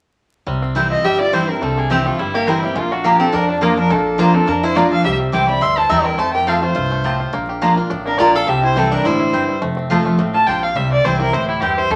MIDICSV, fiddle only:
0, 0, Header, 1, 2, 480
1, 0, Start_track
1, 0, Tempo, 285850
1, 796, Time_signature, 4, 2, 24, 8
1, 20078, End_track
2, 0, Start_track
2, 0, Title_t, "Fiddle"
2, 0, Program_c, 0, 110
2, 1529, Note_on_c, 0, 75, 99
2, 1757, Note_on_c, 0, 76, 109
2, 1782, Note_off_c, 0, 75, 0
2, 2007, Note_off_c, 0, 76, 0
2, 2017, Note_on_c, 0, 74, 106
2, 2243, Note_on_c, 0, 72, 88
2, 2268, Note_off_c, 0, 74, 0
2, 2506, Note_on_c, 0, 70, 77
2, 2531, Note_off_c, 0, 72, 0
2, 2723, Note_on_c, 0, 69, 82
2, 2748, Note_off_c, 0, 70, 0
2, 2980, Note_on_c, 0, 68, 84
2, 3005, Note_off_c, 0, 69, 0
2, 3193, Note_on_c, 0, 67, 73
2, 3219, Note_off_c, 0, 68, 0
2, 3465, Note_on_c, 0, 65, 85
2, 3490, Note_off_c, 0, 67, 0
2, 3673, Note_on_c, 0, 64, 79
2, 3699, Note_off_c, 0, 65, 0
2, 3939, Note_on_c, 0, 67, 89
2, 3964, Note_off_c, 0, 64, 0
2, 4152, Note_on_c, 0, 70, 83
2, 4178, Note_off_c, 0, 67, 0
2, 4414, Note_off_c, 0, 70, 0
2, 4424, Note_on_c, 0, 67, 78
2, 4645, Note_on_c, 0, 65, 92
2, 4670, Note_off_c, 0, 67, 0
2, 4902, Note_on_c, 0, 66, 81
2, 4927, Note_off_c, 0, 65, 0
2, 5140, Note_on_c, 0, 67, 84
2, 5165, Note_off_c, 0, 66, 0
2, 5381, Note_on_c, 0, 69, 98
2, 5406, Note_off_c, 0, 67, 0
2, 5608, Note_on_c, 0, 70, 107
2, 5633, Note_off_c, 0, 69, 0
2, 5851, Note_off_c, 0, 70, 0
2, 5861, Note_on_c, 0, 62, 77
2, 6069, Note_on_c, 0, 65, 71
2, 6094, Note_off_c, 0, 62, 0
2, 6309, Note_off_c, 0, 65, 0
2, 6319, Note_on_c, 0, 70, 99
2, 6567, Note_on_c, 0, 69, 85
2, 6592, Note_off_c, 0, 70, 0
2, 7032, Note_on_c, 0, 72, 90
2, 7057, Note_off_c, 0, 69, 0
2, 7301, Note_on_c, 0, 69, 104
2, 7327, Note_off_c, 0, 72, 0
2, 7536, Note_on_c, 0, 70, 81
2, 7561, Note_off_c, 0, 69, 0
2, 7792, Note_on_c, 0, 72, 104
2, 7818, Note_off_c, 0, 70, 0
2, 7996, Note_on_c, 0, 74, 85
2, 8022, Note_off_c, 0, 72, 0
2, 8244, Note_off_c, 0, 74, 0
2, 8254, Note_on_c, 0, 77, 97
2, 8459, Note_off_c, 0, 77, 0
2, 8470, Note_on_c, 0, 76, 94
2, 8627, Note_off_c, 0, 76, 0
2, 8949, Note_on_c, 0, 86, 77
2, 9193, Note_off_c, 0, 86, 0
2, 9209, Note_on_c, 0, 83, 93
2, 9438, Note_on_c, 0, 84, 99
2, 9464, Note_off_c, 0, 83, 0
2, 9698, Note_on_c, 0, 81, 96
2, 9723, Note_off_c, 0, 84, 0
2, 9903, Note_on_c, 0, 82, 91
2, 9928, Note_off_c, 0, 81, 0
2, 10157, Note_on_c, 0, 79, 92
2, 10182, Note_off_c, 0, 82, 0
2, 10376, Note_on_c, 0, 81, 105
2, 10402, Note_off_c, 0, 79, 0
2, 10626, Note_off_c, 0, 81, 0
2, 10637, Note_on_c, 0, 79, 99
2, 10876, Note_on_c, 0, 77, 79
2, 10901, Note_off_c, 0, 79, 0
2, 11130, Note_off_c, 0, 77, 0
2, 11141, Note_on_c, 0, 72, 86
2, 12251, Note_off_c, 0, 72, 0
2, 13539, Note_on_c, 0, 70, 95
2, 13737, Note_on_c, 0, 74, 84
2, 13762, Note_off_c, 0, 70, 0
2, 14032, Note_on_c, 0, 77, 98
2, 14057, Note_off_c, 0, 74, 0
2, 14248, Note_on_c, 0, 76, 94
2, 14273, Note_off_c, 0, 77, 0
2, 14502, Note_off_c, 0, 76, 0
2, 14511, Note_on_c, 0, 72, 103
2, 14744, Note_on_c, 0, 69, 82
2, 14769, Note_off_c, 0, 72, 0
2, 14987, Note_on_c, 0, 70, 104
2, 15012, Note_off_c, 0, 69, 0
2, 15215, Note_on_c, 0, 72, 92
2, 15240, Note_off_c, 0, 70, 0
2, 16056, Note_off_c, 0, 72, 0
2, 17360, Note_on_c, 0, 81, 104
2, 17573, Note_on_c, 0, 79, 93
2, 17598, Note_off_c, 0, 81, 0
2, 17846, Note_on_c, 0, 77, 90
2, 17871, Note_off_c, 0, 79, 0
2, 18070, Note_on_c, 0, 76, 86
2, 18095, Note_off_c, 0, 77, 0
2, 18324, Note_off_c, 0, 76, 0
2, 18335, Note_on_c, 0, 74, 91
2, 18553, Note_on_c, 0, 72, 82
2, 18578, Note_off_c, 0, 74, 0
2, 18787, Note_off_c, 0, 72, 0
2, 18797, Note_on_c, 0, 70, 98
2, 19032, Note_on_c, 0, 72, 98
2, 19057, Note_off_c, 0, 70, 0
2, 19271, Note_off_c, 0, 72, 0
2, 19281, Note_on_c, 0, 64, 73
2, 19493, Note_on_c, 0, 67, 83
2, 19518, Note_off_c, 0, 64, 0
2, 19774, Note_on_c, 0, 72, 112
2, 19799, Note_off_c, 0, 67, 0
2, 19998, Note_on_c, 0, 69, 78
2, 20023, Note_off_c, 0, 72, 0
2, 20078, Note_off_c, 0, 69, 0
2, 20078, End_track
0, 0, End_of_file